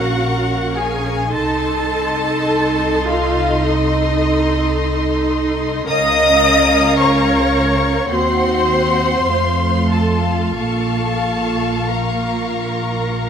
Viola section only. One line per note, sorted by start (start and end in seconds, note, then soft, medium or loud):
0.00 1.30 C#4 medium
0.00 1.30 A#4 medium
1.32 5.85 D#4 medium
1.32 5.85 A4 medium
5.88 8.11 C#4 medium
5.88 8.07 A#4 medium
8.11 9.25 C4 medium
8.11 9.27 F#4 medium
9.27 10.58 A3 medium
9.27 13.29 F4 medium
10.58 13.29 A#3 soft